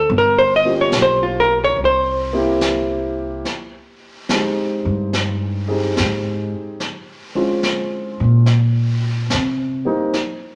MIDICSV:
0, 0, Header, 1, 5, 480
1, 0, Start_track
1, 0, Tempo, 836820
1, 52, Time_signature, 4, 2, 24, 8
1, 6052, End_track
2, 0, Start_track
2, 0, Title_t, "Hollow-body jazz guitar"
2, 0, Program_c, 0, 26
2, 104, Note_on_c, 0, 70, 81
2, 221, Note_on_c, 0, 72, 75
2, 233, Note_off_c, 0, 70, 0
2, 319, Note_off_c, 0, 72, 0
2, 321, Note_on_c, 0, 75, 80
2, 422, Note_off_c, 0, 75, 0
2, 465, Note_on_c, 0, 73, 74
2, 535, Note_off_c, 0, 73, 0
2, 587, Note_on_c, 0, 72, 74
2, 705, Note_on_c, 0, 65, 49
2, 714, Note_off_c, 0, 72, 0
2, 803, Note_on_c, 0, 70, 82
2, 852, Note_off_c, 0, 65, 0
2, 903, Note_off_c, 0, 70, 0
2, 943, Note_on_c, 0, 73, 88
2, 1015, Note_off_c, 0, 73, 0
2, 1062, Note_on_c, 0, 72, 77
2, 1927, Note_off_c, 0, 72, 0
2, 6052, End_track
3, 0, Start_track
3, 0, Title_t, "Grand piano"
3, 0, Program_c, 1, 0
3, 0, Control_c, 1, 64, 127
3, 0, Note_on_c, 1, 66, 64
3, 58, Note_off_c, 1, 66, 0
3, 59, Control_c, 1, 64, 0
3, 157, Control_c, 1, 64, 127
3, 370, Note_on_c, 1, 58, 42
3, 375, Note_on_c, 1, 61, 41
3, 375, Note_on_c, 1, 65, 42
3, 379, Note_on_c, 1, 67, 51
3, 1011, Note_off_c, 1, 58, 0
3, 1013, Note_off_c, 1, 61, 0
3, 1013, Note_off_c, 1, 65, 0
3, 1015, Note_off_c, 1, 67, 0
3, 1018, Control_c, 1, 64, 0
3, 1112, Control_c, 1, 64, 127
3, 1334, Note_on_c, 1, 58, 49
3, 1336, Note_on_c, 1, 60, 48
3, 1341, Note_on_c, 1, 64, 44
3, 1342, Note_on_c, 1, 67, 58
3, 1983, Note_off_c, 1, 58, 0
3, 1984, Note_off_c, 1, 60, 0
3, 1986, Note_off_c, 1, 64, 0
3, 1986, Note_off_c, 1, 67, 0
3, 1989, Control_c, 1, 64, 0
3, 2105, Control_c, 1, 64, 127
3, 2464, Note_on_c, 1, 56, 39
3, 2465, Note_on_c, 1, 60, 36
3, 2470, Note_on_c, 1, 63, 36
3, 2474, Note_on_c, 1, 67, 41
3, 2753, Note_off_c, 1, 56, 0
3, 2753, Note_off_c, 1, 60, 0
3, 2756, Note_off_c, 1, 63, 0
3, 2758, Note_off_c, 1, 67, 0
3, 3259, Note_on_c, 1, 68, 41
3, 3266, Note_on_c, 1, 60, 34
3, 3267, Note_on_c, 1, 63, 36
3, 3270, Note_on_c, 1, 67, 38
3, 3406, Note_off_c, 1, 68, 0
3, 3409, Note_off_c, 1, 60, 0
3, 3410, Note_off_c, 1, 63, 0
3, 3411, Note_off_c, 1, 67, 0
3, 3911, Control_c, 1, 64, 0
3, 3996, Control_c, 1, 64, 127
3, 4216, Note_on_c, 1, 56, 41
3, 4217, Note_on_c, 1, 60, 42
3, 4220, Note_on_c, 1, 61, 43
3, 4223, Note_on_c, 1, 65, 46
3, 4824, Note_off_c, 1, 56, 0
3, 4824, Note_off_c, 1, 60, 0
3, 4826, Note_off_c, 1, 61, 0
3, 4827, Note_off_c, 1, 65, 0
3, 4866, Control_c, 1, 64, 0
3, 4949, Control_c, 1, 64, 127
3, 5651, Note_on_c, 1, 55, 42
3, 5653, Note_on_c, 1, 58, 40
3, 5654, Note_on_c, 1, 60, 45
3, 5658, Note_on_c, 1, 63, 54
3, 5796, Note_off_c, 1, 55, 0
3, 5797, Note_off_c, 1, 58, 0
3, 5797, Note_off_c, 1, 60, 0
3, 5799, Note_off_c, 1, 63, 0
3, 5821, Control_c, 1, 64, 0
3, 5928, Control_c, 1, 64, 127
3, 6052, End_track
4, 0, Start_track
4, 0, Title_t, "Upright bass"
4, 0, Program_c, 2, 32
4, 55, Note_on_c, 2, 31, 91
4, 508, Note_off_c, 2, 31, 0
4, 531, Note_on_c, 2, 35, 71
4, 988, Note_off_c, 2, 35, 0
4, 1011, Note_on_c, 2, 36, 74
4, 1959, Note_off_c, 2, 36, 0
4, 2783, Note_on_c, 2, 43, 71
4, 3400, Note_off_c, 2, 43, 0
4, 3438, Note_on_c, 2, 44, 66
4, 3740, Note_off_c, 2, 44, 0
4, 4704, Note_on_c, 2, 46, 74
4, 5315, Note_off_c, 2, 46, 0
4, 5357, Note_on_c, 2, 48, 71
4, 5654, Note_off_c, 2, 48, 0
4, 6052, End_track
5, 0, Start_track
5, 0, Title_t, "Drums"
5, 54, Note_on_c, 9, 25, 32
5, 526, Note_on_c, 9, 38, 42
5, 526, Note_on_c, 9, 44, 45
5, 584, Note_off_c, 9, 38, 0
5, 584, Note_off_c, 9, 44, 0
5, 1011, Note_off_c, 9, 25, 0
5, 1011, Note_on_c, 9, 25, 41
5, 1497, Note_on_c, 9, 38, 44
5, 1497, Note_on_c, 9, 44, 50
5, 1555, Note_off_c, 9, 38, 0
5, 1555, Note_off_c, 9, 44, 0
5, 1980, Note_off_c, 9, 25, 0
5, 1980, Note_on_c, 9, 25, 36
5, 1980, Note_on_c, 9, 38, 32
5, 2037, Note_off_c, 9, 38, 0
5, 2461, Note_on_c, 9, 38, 47
5, 2519, Note_off_c, 9, 38, 0
5, 2944, Note_off_c, 9, 25, 0
5, 2944, Note_on_c, 9, 25, 45
5, 2944, Note_on_c, 9, 38, 36
5, 3001, Note_off_c, 9, 38, 0
5, 3423, Note_on_c, 9, 38, 45
5, 3481, Note_off_c, 9, 38, 0
5, 3901, Note_off_c, 9, 25, 0
5, 3901, Note_on_c, 9, 25, 39
5, 3901, Note_on_c, 9, 38, 33
5, 3958, Note_off_c, 9, 38, 0
5, 4376, Note_on_c, 9, 38, 44
5, 4434, Note_off_c, 9, 38, 0
5, 4854, Note_off_c, 9, 25, 0
5, 4854, Note_on_c, 9, 25, 42
5, 4854, Note_on_c, 9, 38, 39
5, 4911, Note_off_c, 9, 38, 0
5, 5335, Note_on_c, 9, 38, 49
5, 5392, Note_off_c, 9, 38, 0
5, 5813, Note_off_c, 9, 25, 0
5, 5813, Note_on_c, 9, 25, 43
5, 5813, Note_on_c, 9, 38, 36
5, 5871, Note_off_c, 9, 38, 0
5, 6052, Note_off_c, 9, 25, 0
5, 6052, End_track
0, 0, End_of_file